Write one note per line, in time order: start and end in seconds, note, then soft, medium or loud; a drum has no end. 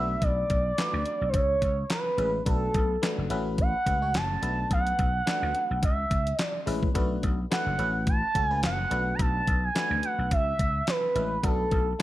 0.00 0.15 B1 medium
0.00 0.62 A3 medium
0.00 0.62 D4 medium
0.00 0.63 F#4 medium
0.00 0.63 B4 medium
0.00 0.25 E5 loud
0.22 0.43 B1 loud
0.22 1.30 D5 loud
0.22 kick loud
0.22 closed hi-hat medium
0.50 0.71 B1 medium
0.50 kick medium
0.50 closed hi-hat medium
0.78 1.34 A3 medium
0.78 1.34 D4 medium
0.78 1.34 F#4 medium
0.78 1.34 B4 medium
0.78 snare loud
0.78 clap medium
0.78 closed hi-hat medium
0.93 1.03 D2 medium
1.06 closed hi-hat medium
1.21 1.31 B1 medium
1.29 1.36 C5 medium
1.34 1.55 C#2 loud
1.34 1.91 C#5 loud
1.34 kick loud
1.34 closed hi-hat medium
1.62 1.83 C#2 medium
1.62 kick medium
1.62 closed hi-hat medium
1.90 2.43 B4 medium
1.90 snare loud
1.90 clap loud
1.90 closed hi-hat medium
2.18 2.39 A1 medium
2.18 2.40 G#3 medium
2.18 2.41 C#4 medium
2.18 2.41 E4 medium
2.18 2.41 B4 medium
2.18 closed hi-hat medium
2.46 2.67 B1 loud
2.46 2.91 A3 medium
2.46 2.91 D4 medium
2.46 2.91 F#4 medium
2.46 3.27 A4 medium
2.46 2.91 B4 medium
2.46 kick loud
2.46 closed hi-hat medium
2.74 2.96 B1 medium
2.74 kick medium
2.74 closed hi-hat medium
3.02 3.29 A3 medium
3.02 3.30 D4 medium
3.02 3.30 F#4 medium
3.02 3.30 B4 medium
3.02 snare loud
3.02 clap medium
3.02 closed hi-hat medium
3.18 3.27 F#1 medium
3.30 3.72 A1 loud
3.30 3.76 A3 medium
3.30 3.77 C#4 medium
3.30 3.77 F#4 medium
3.30 3.77 B4 loud
3.30 closed hi-hat medium
3.58 4.18 F#5 loud
3.58 kick loud
3.58 closed hi-hat medium
3.86 4.16 C#2 medium
3.86 3.98 A3 medium
3.86 3.98 C#4 medium
3.86 3.99 F#4 medium
3.86 3.99 B4 medium
3.86 kick medium
3.86 closed hi-hat medium
4.02 4.41 A3 medium
4.02 4.42 C#4 medium
4.02 4.41 F#4 medium
4.02 4.43 C#5 medium
4.14 4.36 F#1 medium
4.14 4.71 A5 loud
4.14 snare loud
4.14 clap medium
4.14 closed hi-hat medium
4.42 4.64 B1 medium
4.42 5.11 A3 medium
4.42 5.11 D4 medium
4.42 5.11 F#4 medium
4.42 5.11 B4 medium
4.42 closed hi-hat medium
4.71 4.92 B1 loud
4.71 5.80 F#5 loud
4.71 kick loud
4.71 closed hi-hat medium
4.87 closed hi-hat soft
4.99 5.20 B1 loud
4.99 kick medium
4.99 closed hi-hat medium
5.26 5.82 A3 medium
5.26 5.83 D4 medium
5.26 5.83 F#4 medium
5.26 5.83 B4 medium
5.26 snare loud
5.26 clap medium
5.26 closed hi-hat medium
5.42 5.52 D2 medium
5.55 closed hi-hat medium
5.71 5.80 B1 medium
5.83 6.04 C#2 medium
5.83 6.42 E5 medium
5.83 kick loud
5.83 closed hi-hat medium
6.11 6.32 C#2 medium
6.11 kick medium
6.11 closed hi-hat medium
6.27 closed hi-hat medium
6.39 6.64 D5 medium
6.39 snare loud
6.39 clap loud
6.39 closed hi-hat medium
6.66 6.88 A1 medium
6.66 6.89 G#3 medium
6.66 6.89 C#4 medium
6.66 6.89 E4 medium
6.66 6.89 B4 loud
6.66 open hi-hat medium
6.83 kick loud
6.95 7.16 B1 medium
6.95 7.39 A3 medium
6.95 7.40 D4 medium
6.95 7.40 F#4 medium
6.95 7.40 B4 medium
6.95 kick medium
6.95 closed hi-hat medium
7.23 7.44 B1 medium
7.23 kick medium
7.23 closed hi-hat medium
7.51 7.77 A3 medium
7.51 7.79 D4 medium
7.51 7.78 F#4 medium
7.51 7.78 B4 medium
7.51 8.04 F#5 loud
7.51 snare loud
7.51 clap medium
7.51 closed hi-hat medium
7.66 7.76 F#1 medium
7.78 8.21 A1 loud
7.78 8.25 A3 medium
7.78 8.25 C#4 medium
7.78 8.25 F#4 medium
7.78 8.25 B4 medium
7.78 closed hi-hat medium
8.07 8.45 A5 loud
8.07 kick loud
8.07 closed hi-hat medium
8.35 8.65 C#2 medium
8.35 8.47 A3 medium
8.35 8.47 C#4 medium
8.35 8.47 F#4 medium
8.35 8.47 A4 medium
8.35 kick medium
8.35 closed hi-hat medium
8.45 8.60 G#5 loud
8.50 8.89 A3 medium
8.50 8.91 C#4 medium
8.50 8.90 F#4 medium
8.50 8.90 B4 medium
8.63 8.84 F#1 medium
8.63 9.16 F#5 loud
8.63 snare loud
8.63 clap medium
8.63 closed hi-hat medium
8.91 9.12 B1 loud
8.91 9.60 A3 medium
8.91 9.60 D4 medium
8.91 9.60 F#4 medium
8.91 9.60 B4 medium
8.91 closed hi-hat medium
9.15 9.22 B5 medium
9.19 9.40 B1 loud
9.19 9.66 A5 loud
9.19 kick medium
9.19 closed hi-hat medium
9.47 9.69 B1 medium
9.47 kick medium
9.47 closed hi-hat medium
9.64 10.06 G#5 loud
9.75 10.31 A3 medium
9.75 10.31 D4 medium
9.75 10.31 F#4 medium
9.75 10.32 B4 medium
9.75 snare loud
9.75 clap medium
9.75 closed hi-hat medium
9.90 10.00 D2 medium
10.03 10.32 F#5 loud
10.03 closed hi-hat medium
10.18 10.28 B1 medium
10.31 10.52 C#2 loud
10.31 10.90 E5 loud
10.31 kick loud
10.31 closed hi-hat medium
10.59 10.81 C#2 medium
10.59 kick medium
10.59 closed hi-hat medium
10.87 11.46 B4 loud
10.87 snare loud
10.87 clap medium
10.87 closed hi-hat medium
11.15 11.36 A1 medium
11.15 11.38 G#3 medium
11.15 11.38 C#4 medium
11.15 11.38 E4 medium
11.15 11.38 B4 medium
11.15 closed hi-hat medium
11.43 11.65 B1 loud
11.43 11.88 A3 medium
11.43 11.88 D4 medium
11.43 11.88 F#4 medium
11.43 12.00 A4 loud
11.43 11.88 B4 medium
11.43 kick loud
11.43 closed hi-hat medium
11.71 11.93 B1 loud
11.71 kick medium
11.71 closed hi-hat medium
11.99 12.02 A3 medium